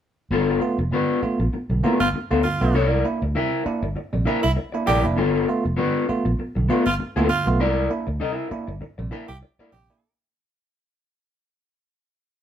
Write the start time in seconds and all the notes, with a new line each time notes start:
0.31 G1 G2 D3 B3 F4 A4
0.48 B3 F4
0.61 A3 B3 F4
0.78 F1, muted clean electric guitar stroke
0.92 G2 D3 B3 F4 B4
1.22 A3 B3 F4, muted fingered electric bass stroke, muted clean electric guitar stroke
1.40 A#1 B3 F4, muted clean electric guitar stroke
1.53 B3 F4, muted fingered electric bass stroke, muted clean electric guitar stroke
1.70 B1 G2 D3, muted clean electric guitar stroke
1.83 A3 B3 F4 B4
2.00 G1 F4, muted clean electric guitar stroke
2.14 muted fingered electric bass stroke, muted clean electric guitar stroke
2.31 D2 A3 B3 F4 A4
2.44 G2 D3 F4, muted clean electric guitar stroke
2.61 B1 A3 B3 F4, muted clean electric guitar stroke
2.74 C2 C3 G3 D#4 A4 C#5
2.86 E4 A#4 D5
2.92 D4 E4
3.05 A#3 D4 E4
3.22 D2, muted clean electric guitar stroke
3.35 C3 G3 E4 A#4 E5
3.65 A#3 D4 E4, muted clean electric guitar stroke, muted fingered electric bass stroke
3.83 G1 D4 E4, muted clean electric guitar stroke
3.96 D4 E4, muted clean electric guitar stroke, muted fingered electric bass stroke
4.13 A#1 C3 G3, muted clean electric guitar stroke
4.25 A#3 D4 E4 A#4 E5
4.43 C2 E4, muted clean electric guitar stroke
4.56 muted clean electric guitar stroke
4.72 A#3 D4 E4, muted clean electric guitar stroke
4.86 A#1 C3 G3 E4 G4 A#4 D5
5.03 F1 A#3 D4 E4, muted clean electric guitar stroke
5.16 G1 G2 D3 B3 F4 A4
5.35 B3 F4
5.48 A3 B3 F4
5.64 F1, muted clean electric guitar stroke
5.77 G2 D3 B3 F4 B4
6.08 A3 B3 F4, muted clean electric guitar stroke, muted fingered electric bass stroke
6.25 A#1 B3 F4, muted clean electric guitar stroke
6.39 B3 F4, muted clean electric guitar stroke, muted fingered electric bass stroke
6.55 B1 G2 D3, muted clean electric guitar stroke
6.69 A3 B3 F4 B4
6.86 G1 F4, muted clean electric guitar stroke
6.99 muted clean electric guitar stroke, muted fingered electric bass stroke
7.16 D2 A3 B3 F4 A4
7.29 G2 D3 F4, muted clean electric guitar stroke
7.46 B1 A3 B3 F4, muted clean electric guitar stroke
7.60 C2 C3 G3 E4 A#4 D5
7.77 D4 E4
7.90 A#3 D4 E4
8.07 D2, muted clean electric guitar stroke
8.20 C3 G3 D#4 A4 D#5
8.32 E4 A#4 E5
8.50 A#3 D4 E4, muted clean electric guitar stroke, muted fingered electric bass stroke
8.68 G1 D4 E4, muted clean electric guitar stroke
8.81 D4 E4, muted clean electric guitar stroke, muted fingered electric bass stroke
8.98 A#1 C3 G3, muted clean electric guitar stroke
9.11 A#3 D4 E4 A#4 E5
9.28 C2 G4, muted clean electric guitar stroke
9.42 muted clean electric guitar stroke
9.59 A#3 D4 E4 A#4 D5, muted fingered electric bass stroke
9.72 A#1 C3 G3 G4, muted clean electric guitar stroke
9.90 A#3 D4 E4, muted clean electric guitar stroke